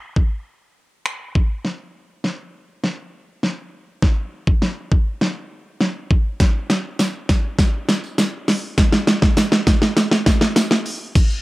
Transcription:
0.16 kick
1.06 finger snap
1.35 kick
1.65 snare
2.24 snare
2.84 snare
3.43 snare
4.02 kick, snare
4.47 kick
4.62 snare
4.92 kick
5.21 snare
5.81 snare
6.11 kick
6.40 kick, snare, closed hi-hat, tambourine
6.70 snare, closed hi-hat, tambourine
6.99 snare, closed hi-hat, tambourine
7.29 kick, snare, closed hi-hat, tambourine
7.59 kick, snare, closed hi-hat, tambourine
7.89 snare, closed hi-hat, tambourine
8.04 tambourine
8.18 snare, closed hi-hat, tambourine
8.48 snare, open hi-hat, tambourine
8.78 kick, snare, closed hi-hat, tambourine
8.92 snare, tambourine
9.07 snare, closed hi-hat, tambourine
9.22 kick, snare
9.37 snare, closed hi-hat, tambourine
9.52 snare
9.67 kick, snare, closed hi-hat, tambourine
9.82 snare, tambourine
9.97 snare, closed hi-hat, tambourine
10.11 snare
10.26 kick, snare, closed hi-hat, tambourine
10.41 snare, tambourine
10.56 snare, closed hi-hat, tambourine
10.71 snare
10.86 open hi-hat, tambourine
11.15 kick, closed hi-hat, crash, tambourine
11.30 tambourine

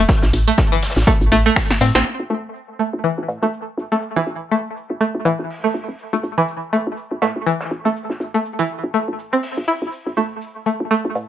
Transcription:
0.08 kick, snare, shaker
0.22 A1, snare, shaker
0.33 A1, open hi-hat, cabasa, shaker
0.48 A3
0.58 kick, snare, shaker
0.72 E3, cabasa
0.83 snare, open hi-hat, shaker
0.90 snare, shaker
0.96 A1, snare, cabasa, shaker
1.01 snare, shaker
1.07 A3, kick, shaker
1.21 A1, cabasa
1.32 A1 A3, open hi-hat, cabasa, shaker
1.46 A3
1.56 finger snap, kick, snare, open hi-hat
1.71 snare
1.81 A2 C4, snare, open hi-hat, shaker
1.95 A1 C4, snare, shaker
2.20 A1
2.30 A1 A3, shaker
2.55 shaker
2.79 A3, shaker
2.93 A1
3.04 E3, shaker
3.18 A1
3.28 A2, shaker
3.43 A1 A3
3.53 shaker
3.78 A1, shaker
3.92 E1 A3, snare
4.02 shaker
4.16 A1 E3, snare
4.27 A1, shaker
4.51 A3, shaker
4.76 shaker
4.90 A1
5.01 A3, shaker
5.15 A1
5.25 A2 E3, shaker
5.39 A1
5.50 open hi-hat
5.64 A3
5.74 A1, shaker
5.88 E1
5.98 shaker
6.13 A1 A3
6.23 A1, shaker
6.38 E3
6.48 shaker
6.73 A3, shaker
6.87 A1
6.97 shaker
7.12 A1
7.22 A2 A3, snare, shaker
7.36 A1
7.46 E3, shaker
7.60 snare, shaker
7.71 A1
7.85 E1 A3, shaker
7.96 shaker
8.10 A1, snare
8.20 A1, shaker
8.34 A3
8.45 shaker
8.59 E3
8.69 shaker
8.84 A1
8.94 A3, shaker
9.08 A1
9.19 shaker
9.33 G1 C4
9.43 open hi-hat
9.57 A1
9.68 E4, shaker
9.82 A1
9.92 shaker
10.07 A1
10.17 A1 A3, shaker
10.41 shaker
10.66 A3, shaker
10.80 A1
10.91 A3, shaker
11.05 A1
11.15 A2, shaker

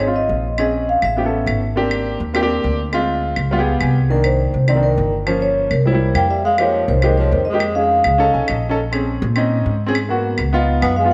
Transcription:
Already playing: G#1 C#5
0.06 C4 D#4 F4
0.16 D#5
0.29 A#1
0.58 C4 C#4 G#4 D#5, claves
0.89 F5
1.02 A1 E5, claves
1.17 B3 C#4 G4
1.24 B3 C#4 A4
1.46 G#1, claves
1.76 A#3 C4 D4 G4
1.91 claves
2.20 D#2
2.34 A#3 C4 D4 G4, claves
2.41 A#3 C4 D4 G4
2.64 D2
2.92 G#3 C4 F4, claves
3.36 C#2, claves
3.51 G3 B3 F4
3.58 B3 G4 G#4
3.67 F5
3.81 C2 G#5, claves
4.10 D#3 A#3 D4 A#4
4.24 C5, claves
4.54 C2
4.68 D#3 A#3 C4 D5, claves
4.75 D#3 A#3 D4
4.83 A#4
4.98 G1
5.26 F3 A#3 C#4 C5, claves
5.42 C#5
5.71 C2 A#4, claves
5.85 G3 A#3 E4 C5
5.93 G3 A#3 E4
6.14 F2 A#3 G5, claves
6.30 G3 E5
6.44 G#3 F5
6.58 F3 G#3 A#3 D#4 G4 C#5, claves
6.88 C2 D#3 C5
7.02 D#3 G#3 A#3 D#4 G4 C5, claves
7.18 F3 C#5
7.32 F2 D#3 C5
7.45 G#3 D#5
7.53 G#3 A#3 D#4 G4
7.60 claves
7.75 G#3 C#4 D#4 G#4 F5
8.04 C#2, claves
8.18 C#4 D#4 A4
8.34 B1 G#5
8.48 A#1 D#5, claves
8.69 C#4 D#4 A4
8.92 C4 C#4 G#4, claves
9.22 A#2
9.36 C4 C#4 D#4, claves
9.66 G#2
9.86 C4 C#4 G#4
9.95 claves
10.09 A#3 B3 F#4
10.38 C#2, claves
10.53 B3 D#4 F4
10.82 F#2 B3 G#5, claves
10.96 G#3 F5
11.04 B3 D#4 F4

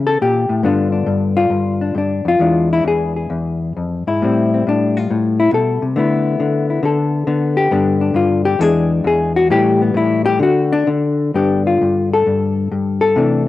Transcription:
Already playing: C#3 E3 A#3 C#4
0.07 A4
0.22 A#2 G4
0.49 A2
0.63 G2 D3 B3 D4 F4
0.92 D4
1.06 G2
1.37 F4
1.50 G2
1.81 D4
1.95 G2 D4
2.25 F2 F4
2.39 E2 E3 G#3 D4
2.73 E4
2.84 E2 G#4
3.16 G#4
3.30 E2
3.77 F2
4.07 G#2 E4
4.22 A2 G3 C4
4.54 C4
4.67 A2 D4
4.97 F4
5.11 A2
5.40 E4
5.52 B2 A4
5.82 C3
5.96 D3 A3 B3 E4
6.40 D3
6.70 E4
6.83 D3 A4
7.27 D3 B3
7.57 G4
7.71 G2 D3 B3 D4
8.01 D4
8.14 G2 F4
8.45 G4
8.59 E2 E3 G#3 D4 G#4
9.04 E2 G#4
9.36 F#4
9.50 A2 E3 G3 G4
9.82 B3
9.94 A2 E4
10.26 G4
10.39 D3 F#4
10.72 D4
10.87 D3
11.34 G2 D3 B3 D4 G4
11.67 F4
11.82 G2
12.13 A4
12.26 G2
12.71 G2
13.01 A4
13.16 C3 E3 A3 D4

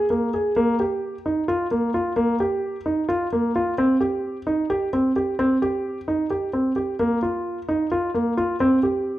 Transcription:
0.10 A#3
0.34 G#4
0.56 A#3
0.80 G4
1.26 D#4
1.48 F4
1.71 A#3
1.94 F4
2.16 A#3
2.40 G4
2.86 D#4
3.09 F4
3.33 A#3
3.56 F4
3.78 C4
4.01 G4
4.47 D#4
4.70 G4
4.93 C4
5.16 G4
5.39 C4
5.62 G4
6.08 D#4
6.30 G4
6.53 C4
6.76 G4
6.99 A#3
7.23 F4
7.69 D#4
7.92 F4
8.14 A#3
8.37 F4
8.60 C4
8.83 G4

